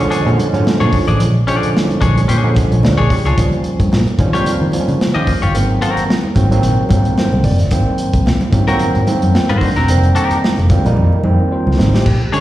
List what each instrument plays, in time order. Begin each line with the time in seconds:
0.00 tine electric piano D3 F3 G#3 C#4, closed hi-hat
0.10 clean electric guitar D4 G#4 C#5, muted picked electric bass stroke, closed hi-hat, muted conga, low conga
0.25 picked electric bass A#2, tine electric piano D3 F3 G#3 C#4, closed hi-hat, muted conga
0.37 closed hi-hat, high conga
0.53 picked electric bass G#2, tine electric piano D3 F3 G#3 C#4, closed hi-hat, high conga
0.65 snare, muted conga
0.80 picked electric bass A#2, clean electric guitar D4 G#4 C#5, closed hi-hat, muted conga, high conga
0.92 kick, open hi-hat, low conga
1.08 picked electric bass A1, clean electric guitar D4 G#4 D5, closed hi-hat
1.20 picked electric bass A#1, closed hi-hat
1.34 muted conga
1.47 tine electric piano C#3 F3 G#3 C#4, clean electric guitar D4 G#4 D5, closed hi-hat
1.53 tine electric piano D3
1.63 muted picked electric bass stroke, closed hi-hat
1.77 snare
1.88 closed hi-hat, muted conga, high conga
2.01 picked electric bass A#1, clean electric guitar D4 G#4 C#5, kick, closed hi-hat, low conga
2.16 closed hi-hat, high conga
2.27 picked electric bass A#2, clean electric guitar D4 G#4 C#5, closed hi-hat, low conga
2.44 picked electric bass A#2, tine electric piano D3 F3 G#3 C#4, muted conga
2.55 kick, closed hi-hat, high conga
2.71 picked electric bass A#1, tine electric piano C#5, closed hi-hat, high conga
2.83 picked electric bass D2, tine electric piano A#4 D5, snare, muted conga
2.98 picked electric bass A#1, clean electric guitar D4 G#4 C#5, tine electric piano G#4, high conga
3.10 tine electric piano G4, kick, open hi-hat, low conga
3.25 picked electric bass C#2, clean electric guitar D4 G#4 C#5, tine electric piano F4, closed hi-hat
3.37 picked electric bass D#2, tine electric piano F3 F#3 A#3 C#4, kick, closed hi-hat, muted conga
3.44 tine electric piano G3
3.52 closed hi-hat
3.64 closed hi-hat
3.80 picked electric bass G2, kick, closed hi-hat
3.92 picked electric bass A#2, snare, muted conga
4.06 closed hi-hat, high conga
4.19 picked electric bass D#3, tine electric piano F3 G3 A#3 C#4, kick, closed hi-hat, low conga
4.33 tine electric piano F3 G3 A#3 C4, clean electric guitar F4 G4 C#5, closed hi-hat, high conga
4.46 muted picked electric bass stroke, closed hi-hat, muted conga, low conga
4.61 picked electric bass D#3
4.72 tine electric piano F3 G3 A#3 C4, closed hi-hat, high conga
4.80 tine electric piano C#4
4.88 picked electric bass C#3, closed hi-hat, high conga
5.01 snare
5.15 picked electric bass D#3, clean electric guitar F4 G4 D#5, muted conga, high conga
5.27 kick, open hi-hat
5.42 picked electric bass G1, clean electric guitar F4 G4 C#5, closed hi-hat
5.54 picked electric bass G#1, tine electric piano D#3 F#3 A#3 C4, closed hi-hat
5.82 clean electric guitar C4 F#4 A#4, closed hi-hat
5.97 muted picked electric bass stroke, closed hi-hat
6.10 snare
6.23 muted conga, high conga
6.35 picked electric bass G#1, tine electric piano D#3 F#3 A#3 C4, kick, closed hi-hat, low conga
6.49 tine electric piano D#3 F#3 A#3 C4, closed hi-hat, high conga
6.62 picked electric bass A#1, closed hi-hat, muted conga, low conga
6.89 picked electric bass G#2, tine electric piano D#3 F#3 A#3 C4 A#4, kick, closed hi-hat, high conga
7.05 closed hi-hat, high conga
7.17 tine electric piano C5, snare, muted conga
7.33 picked electric bass C2, high conga
7.44 picked electric bass F#1, tine electric piano D5, kick, open hi-hat
7.59 picked electric bass G1, snare, closed hi-hat
7.71 picked electric bass G#1, tine electric piano D#3 F#3 A#3 C4, kick, closed hi-hat, muted conga
7.86 muted conga
7.98 closed hi-hat
8.13 picked electric bass C2, kick, closed hi-hat
8.26 picked electric bass D#2, snare, muted conga
8.41 closed hi-hat, muted conga, high conga
8.52 picked electric bass G#2, tine electric piano D#3 F#3 A#3 C4, kick, closed hi-hat, low conga
8.67 tine electric piano D#3 F#3 A#3 C4, clean electric guitar C4 F#4 A#4, closed hi-hat, high conga
8.79 muted picked electric bass stroke, closed hi-hat, low conga
8.95 picked electric bass G#2, closed hi-hat, muted conga
9.07 tine electric piano D#3 F#3 A#3 C4, closed hi-hat, high conga
9.22 picked electric bass F#2, closed hi-hat, high conga
9.35 tine electric piano C4, snare
9.49 picked electric bass G#2, clean electric guitar C4 F#4 C5, tine electric piano D#4, closed hi-hat, muted conga, high conga
9.61 tine electric piano D4, kick, open hi-hat
9.76 picked electric bass E1, clean electric guitar C4 F#4 A#4, tine electric piano C4, snare, closed hi-hat
9.88 picked electric bass F1, tine electric piano D#3 G3 A#3 C4, closed hi-hat
10.03 closed hi-hat
10.15 clean electric guitar D#4 G4 A#4, closed hi-hat
10.31 muted picked electric bass stroke, closed hi-hat
10.44 snare, muted conga
10.57 picked electric bass F1, closed hi-hat, high conga
10.69 tine electric piano D#3 G3 A#3 C4, kick, closed hi-hat, low conga
10.85 picked electric bass A#1, tine electric piano D#3 G3 A#3 D#4, closed hi-hat, high conga
10.97 picked electric bass F2, muted conga, low conga
11.13 muted conga
11.24 picked electric bass F2, tine electric piano D#3 G3 A#3 C4, high conga
11.40 high conga
11.52 tine electric piano F4 C5
11.67 picked electric bass C#2, muted conga, high conga
11.79 picked electric bass G#1, tine electric piano D#4, snare, low conga
11.94 picked electric bass A1, tine electric piano G4, snare
12.06 picked electric bass A#1, kick, crash
12.21 muted conga
12.32 tine electric piano D3 G#3 C#4, clean electric guitar D4 G#4 C#5, closed hi-hat